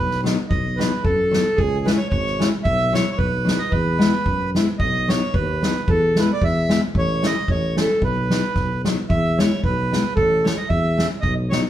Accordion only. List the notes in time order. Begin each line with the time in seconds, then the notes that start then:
Already playing: B4
0.49 D#5
0.76 B4
1.04 A4
1.56 G#4
1.86 B4
1.97 C#5
2.09 C#5
2.64 E5
2.94 C#5
3.12 C#5
3.18 B4
3.58 D#5
3.71 B4
4.79 D#5
5.09 C#5
5.34 B4
5.89 A4
6.19 B4
6.33 D5
6.44 E5
6.98 C#5
7.26 D#5
7.50 C#5
7.80 A4
8.04 B4
9.09 E5
9.38 C#5
9.64 B4
10.16 A4
10.44 C#5
10.57 D#5
10.69 E5
11.21 D#5
11.50 C#5